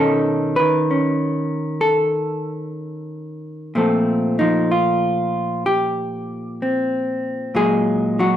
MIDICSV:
0, 0, Header, 1, 2, 480
1, 0, Start_track
1, 0, Tempo, 950872
1, 1894, Time_signature, 4, 2, 24, 8
1, 4224, End_track
2, 0, Start_track
2, 0, Title_t, "Hollow-body jazz guitar"
2, 0, Program_c, 0, 26
2, 0, Note_on_c, 0, 47, 75
2, 0, Note_on_c, 0, 51, 51
2, 0, Note_on_c, 0, 61, 50
2, 0, Note_on_c, 0, 63, 52
2, 0, Note_on_c, 0, 69, 93
2, 282, Note_off_c, 0, 69, 0
2, 284, Note_on_c, 0, 71, 94
2, 293, Note_off_c, 0, 51, 0
2, 296, Note_off_c, 0, 47, 0
2, 299, Note_on_c, 0, 51, 64
2, 452, Note_off_c, 0, 61, 0
2, 458, Note_on_c, 0, 61, 45
2, 912, Note_off_c, 0, 71, 0
2, 914, Note_on_c, 0, 69, 98
2, 1882, Note_off_c, 0, 61, 0
2, 1883, Note_off_c, 0, 63, 0
2, 1888, Note_off_c, 0, 69, 0
2, 1894, Note_on_c, 0, 46, 71
2, 1895, Note_off_c, 0, 51, 0
2, 1897, Note_on_c, 0, 53, 48
2, 1900, Note_on_c, 0, 57, 46
2, 1904, Note_on_c, 0, 60, 43
2, 1910, Note_on_c, 0, 69, 46
2, 2214, Note_off_c, 0, 60, 0
2, 2216, Note_on_c, 0, 63, 77
2, 2220, Note_off_c, 0, 53, 0
2, 2226, Note_on_c, 0, 53, 63
2, 2373, Note_off_c, 0, 63, 0
2, 2378, Note_off_c, 0, 69, 0
2, 2380, Note_on_c, 0, 65, 76
2, 2855, Note_off_c, 0, 65, 0
2, 2857, Note_on_c, 0, 67, 97
2, 3343, Note_on_c, 0, 60, 47
2, 3794, Note_off_c, 0, 53, 0
2, 3796, Note_off_c, 0, 57, 0
2, 3803, Note_off_c, 0, 46, 0
2, 3809, Note_on_c, 0, 46, 68
2, 3810, Note_off_c, 0, 67, 0
2, 3814, Note_off_c, 0, 60, 0
2, 3814, Note_on_c, 0, 54, 50
2, 3818, Note_on_c, 0, 56, 45
2, 3818, Note_on_c, 0, 68, 107
2, 4134, Note_off_c, 0, 54, 0
2, 4135, Note_on_c, 0, 54, 66
2, 4138, Note_off_c, 0, 68, 0
2, 4141, Note_on_c, 0, 66, 86
2, 4224, Note_off_c, 0, 46, 0
2, 4224, Note_off_c, 0, 54, 0
2, 4224, Note_off_c, 0, 56, 0
2, 4224, Note_off_c, 0, 66, 0
2, 4224, End_track
0, 0, End_of_file